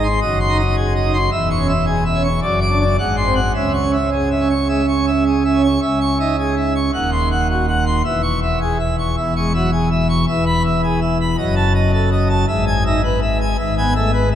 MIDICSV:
0, 0, Header, 1, 2, 480
1, 0, Start_track
1, 0, Key_signature, 4, "minor"
1, 0, Tempo, 553506
1, 1154, Time_signature, 4, 2, 24, 8
1, 2597, Tempo, 566572
1, 4997, Tempo, 556586
1, 8357, Tempo, 549954
1, 12396, End_track
2, 0, Start_track
2, 0, Title_t, "Pipe organ"
2, 0, Program_c, 0, 19
2, 0, Note_on_c, 0, 32, 88
2, 0, Note_on_c, 0, 44, 83
2, 28, Note_on_c, 0, 84, 72
2, 166, Note_off_c, 0, 32, 0
2, 167, Note_off_c, 0, 44, 0
2, 167, Note_off_c, 0, 84, 0
2, 185, Note_on_c, 0, 42, 88
2, 185, Note_on_c, 0, 75, 77
2, 186, Note_on_c, 0, 30, 84
2, 332, Note_off_c, 0, 75, 0
2, 347, Note_on_c, 0, 84, 91
2, 424, Note_on_c, 0, 63, 75
2, 494, Note_off_c, 0, 84, 0
2, 506, Note_on_c, 0, 75, 71
2, 536, Note_off_c, 0, 63, 0
2, 653, Note_off_c, 0, 75, 0
2, 662, Note_on_c, 0, 68, 78
2, 810, Note_off_c, 0, 68, 0
2, 825, Note_on_c, 0, 75, 64
2, 908, Note_on_c, 0, 63, 71
2, 972, Note_off_c, 0, 75, 0
2, 985, Note_on_c, 0, 84, 83
2, 1018, Note_off_c, 0, 63, 0
2, 1119, Note_off_c, 0, 42, 0
2, 1120, Note_off_c, 0, 30, 0
2, 1125, Note_off_c, 0, 84, 0
2, 1145, Note_on_c, 0, 76, 80
2, 1146, Note_on_c, 0, 40, 81
2, 1148, Note_on_c, 0, 28, 84
2, 1291, Note_off_c, 0, 76, 0
2, 1303, Note_on_c, 0, 85, 105
2, 1377, Note_on_c, 0, 61, 60
2, 1450, Note_off_c, 0, 85, 0
2, 1460, Note_on_c, 0, 76, 63
2, 1491, Note_off_c, 0, 61, 0
2, 1608, Note_off_c, 0, 76, 0
2, 1616, Note_on_c, 0, 68, 70
2, 1765, Note_off_c, 0, 68, 0
2, 1782, Note_on_c, 0, 76, 69
2, 1862, Note_on_c, 0, 61, 60
2, 1929, Note_off_c, 0, 76, 0
2, 1937, Note_on_c, 0, 85, 64
2, 1973, Note_off_c, 0, 61, 0
2, 2079, Note_off_c, 0, 40, 0
2, 2080, Note_off_c, 0, 85, 0
2, 2081, Note_off_c, 0, 28, 0
2, 2100, Note_on_c, 0, 74, 67
2, 2101, Note_on_c, 0, 42, 71
2, 2102, Note_on_c, 0, 30, 75
2, 2249, Note_off_c, 0, 74, 0
2, 2260, Note_on_c, 0, 86, 82
2, 2342, Note_on_c, 0, 62, 59
2, 2409, Note_off_c, 0, 86, 0
2, 2428, Note_on_c, 0, 74, 62
2, 2455, Note_off_c, 0, 62, 0
2, 2569, Note_off_c, 0, 74, 0
2, 2576, Note_off_c, 0, 42, 0
2, 2577, Note_off_c, 0, 30, 0
2, 2585, Note_on_c, 0, 32, 82
2, 2588, Note_on_c, 0, 78, 64
2, 2589, Note_on_c, 0, 44, 77
2, 2734, Note_off_c, 0, 78, 0
2, 2742, Note_on_c, 0, 84, 77
2, 2824, Note_on_c, 0, 60, 61
2, 2890, Note_off_c, 0, 84, 0
2, 2899, Note_on_c, 0, 78, 66
2, 2935, Note_off_c, 0, 60, 0
2, 3042, Note_off_c, 0, 78, 0
2, 3055, Note_off_c, 0, 32, 0
2, 3057, Note_off_c, 0, 44, 0
2, 3063, Note_on_c, 0, 37, 63
2, 3065, Note_on_c, 0, 49, 67
2, 3065, Note_on_c, 0, 76, 54
2, 3212, Note_off_c, 0, 76, 0
2, 3224, Note_on_c, 0, 85, 85
2, 3305, Note_on_c, 0, 61, 55
2, 3372, Note_off_c, 0, 85, 0
2, 3380, Note_on_c, 0, 76, 57
2, 3417, Note_off_c, 0, 61, 0
2, 3530, Note_off_c, 0, 76, 0
2, 3545, Note_on_c, 0, 68, 56
2, 3693, Note_off_c, 0, 68, 0
2, 3709, Note_on_c, 0, 76, 56
2, 3790, Note_on_c, 0, 61, 51
2, 3856, Note_off_c, 0, 76, 0
2, 3875, Note_on_c, 0, 85, 54
2, 3901, Note_off_c, 0, 61, 0
2, 4020, Note_off_c, 0, 85, 0
2, 4027, Note_on_c, 0, 56, 51
2, 4032, Note_on_c, 0, 76, 56
2, 4139, Note_off_c, 0, 56, 0
2, 4177, Note_off_c, 0, 76, 0
2, 4197, Note_on_c, 0, 85, 59
2, 4274, Note_on_c, 0, 61, 53
2, 4340, Note_off_c, 0, 85, 0
2, 4356, Note_on_c, 0, 76, 59
2, 4383, Note_off_c, 0, 61, 0
2, 4499, Note_off_c, 0, 76, 0
2, 4518, Note_on_c, 0, 68, 61
2, 4661, Note_off_c, 0, 68, 0
2, 4677, Note_on_c, 0, 76, 46
2, 4757, Note_on_c, 0, 61, 56
2, 4821, Note_off_c, 0, 76, 0
2, 4840, Note_on_c, 0, 85, 60
2, 4865, Note_off_c, 0, 61, 0
2, 4957, Note_off_c, 0, 37, 0
2, 4958, Note_off_c, 0, 49, 0
2, 4974, Note_off_c, 0, 85, 0
2, 4992, Note_on_c, 0, 49, 65
2, 4993, Note_on_c, 0, 76, 56
2, 4994, Note_on_c, 0, 37, 70
2, 5138, Note_off_c, 0, 76, 0
2, 5155, Note_on_c, 0, 85, 87
2, 5299, Note_off_c, 0, 85, 0
2, 5317, Note_on_c, 0, 63, 48
2, 5317, Note_on_c, 0, 76, 64
2, 5454, Note_off_c, 0, 63, 0
2, 5460, Note_off_c, 0, 76, 0
2, 5477, Note_on_c, 0, 68, 56
2, 5620, Note_off_c, 0, 68, 0
2, 5636, Note_on_c, 0, 76, 59
2, 5780, Note_off_c, 0, 76, 0
2, 5795, Note_on_c, 0, 85, 53
2, 5926, Note_off_c, 0, 49, 0
2, 5927, Note_off_c, 0, 37, 0
2, 5932, Note_off_c, 0, 85, 0
2, 5953, Note_on_c, 0, 27, 70
2, 5953, Note_on_c, 0, 78, 63
2, 5955, Note_on_c, 0, 39, 68
2, 6097, Note_off_c, 0, 78, 0
2, 6108, Note_on_c, 0, 84, 74
2, 6254, Note_off_c, 0, 84, 0
2, 6273, Note_on_c, 0, 78, 69
2, 6416, Note_off_c, 0, 78, 0
2, 6436, Note_on_c, 0, 66, 66
2, 6578, Note_off_c, 0, 66, 0
2, 6594, Note_on_c, 0, 78, 54
2, 6737, Note_off_c, 0, 78, 0
2, 6752, Note_on_c, 0, 84, 73
2, 6883, Note_off_c, 0, 27, 0
2, 6884, Note_off_c, 0, 39, 0
2, 6889, Note_off_c, 0, 84, 0
2, 6910, Note_on_c, 0, 40, 72
2, 6915, Note_on_c, 0, 28, 72
2, 6915, Note_on_c, 0, 76, 59
2, 7058, Note_off_c, 0, 76, 0
2, 7064, Note_on_c, 0, 85, 83
2, 7211, Note_off_c, 0, 85, 0
2, 7238, Note_on_c, 0, 76, 64
2, 7379, Note_off_c, 0, 76, 0
2, 7399, Note_on_c, 0, 68, 67
2, 7540, Note_off_c, 0, 68, 0
2, 7555, Note_on_c, 0, 76, 61
2, 7699, Note_off_c, 0, 76, 0
2, 7723, Note_on_c, 0, 85, 54
2, 7864, Note_off_c, 0, 85, 0
2, 7866, Note_off_c, 0, 28, 0
2, 7867, Note_off_c, 0, 40, 0
2, 7883, Note_on_c, 0, 28, 57
2, 7883, Note_on_c, 0, 76, 56
2, 7885, Note_on_c, 0, 40, 60
2, 8024, Note_off_c, 0, 76, 0
2, 8045, Note_on_c, 0, 85, 54
2, 8048, Note_on_c, 0, 56, 60
2, 8185, Note_off_c, 0, 85, 0
2, 8186, Note_off_c, 0, 56, 0
2, 8202, Note_on_c, 0, 76, 59
2, 8203, Note_on_c, 0, 54, 54
2, 8336, Note_off_c, 0, 54, 0
2, 8343, Note_off_c, 0, 76, 0
2, 8356, Note_on_c, 0, 68, 62
2, 8500, Note_off_c, 0, 68, 0
2, 8521, Note_on_c, 0, 76, 54
2, 8664, Note_off_c, 0, 76, 0
2, 8679, Note_on_c, 0, 85, 68
2, 8814, Note_off_c, 0, 28, 0
2, 8815, Note_off_c, 0, 40, 0
2, 8816, Note_off_c, 0, 85, 0
2, 8843, Note_on_c, 0, 28, 70
2, 8843, Note_on_c, 0, 76, 63
2, 8846, Note_on_c, 0, 40, 80
2, 8985, Note_off_c, 0, 76, 0
2, 9001, Note_on_c, 0, 83, 89
2, 9145, Note_off_c, 0, 83, 0
2, 9165, Note_on_c, 0, 76, 57
2, 9308, Note_off_c, 0, 76, 0
2, 9327, Note_on_c, 0, 68, 61
2, 9469, Note_off_c, 0, 68, 0
2, 9483, Note_on_c, 0, 76, 62
2, 9627, Note_off_c, 0, 76, 0
2, 9655, Note_on_c, 0, 83, 59
2, 9777, Note_off_c, 0, 28, 0
2, 9779, Note_off_c, 0, 40, 0
2, 9786, Note_off_c, 0, 83, 0
2, 9800, Note_on_c, 0, 42, 79
2, 9800, Note_on_c, 0, 75, 68
2, 9802, Note_on_c, 0, 30, 80
2, 9944, Note_off_c, 0, 75, 0
2, 9959, Note_on_c, 0, 81, 82
2, 10104, Note_off_c, 0, 81, 0
2, 10120, Note_on_c, 0, 75, 68
2, 10265, Note_off_c, 0, 75, 0
2, 10284, Note_on_c, 0, 69, 71
2, 10428, Note_off_c, 0, 69, 0
2, 10444, Note_on_c, 0, 75, 61
2, 10588, Note_off_c, 0, 75, 0
2, 10604, Note_on_c, 0, 81, 73
2, 10735, Note_off_c, 0, 42, 0
2, 10736, Note_off_c, 0, 30, 0
2, 10741, Note_off_c, 0, 81, 0
2, 10764, Note_on_c, 0, 76, 70
2, 10765, Note_on_c, 0, 44, 78
2, 10767, Note_on_c, 0, 32, 83
2, 10907, Note_off_c, 0, 76, 0
2, 10931, Note_on_c, 0, 80, 95
2, 11070, Note_off_c, 0, 80, 0
2, 11095, Note_on_c, 0, 63, 56
2, 11097, Note_on_c, 0, 76, 71
2, 11225, Note_off_c, 0, 63, 0
2, 11234, Note_off_c, 0, 76, 0
2, 11249, Note_on_c, 0, 71, 72
2, 11389, Note_off_c, 0, 71, 0
2, 11411, Note_on_c, 0, 76, 70
2, 11550, Note_off_c, 0, 76, 0
2, 11573, Note_on_c, 0, 80, 72
2, 11710, Note_off_c, 0, 44, 0
2, 11711, Note_off_c, 0, 80, 0
2, 11712, Note_off_c, 0, 32, 0
2, 11728, Note_on_c, 0, 44, 73
2, 11728, Note_on_c, 0, 76, 73
2, 11729, Note_on_c, 0, 32, 63
2, 11868, Note_off_c, 0, 76, 0
2, 11894, Note_on_c, 0, 80, 67
2, 11895, Note_on_c, 0, 59, 66
2, 12031, Note_off_c, 0, 59, 0
2, 12031, Note_off_c, 0, 80, 0
2, 12050, Note_on_c, 0, 76, 72
2, 12052, Note_on_c, 0, 57, 60
2, 12182, Note_off_c, 0, 57, 0
2, 12188, Note_off_c, 0, 76, 0
2, 12203, Note_on_c, 0, 71, 76
2, 12344, Note_off_c, 0, 71, 0
2, 12366, Note_on_c, 0, 76, 69
2, 12396, Note_off_c, 0, 32, 0
2, 12396, Note_off_c, 0, 44, 0
2, 12396, Note_off_c, 0, 76, 0
2, 12396, End_track
0, 0, End_of_file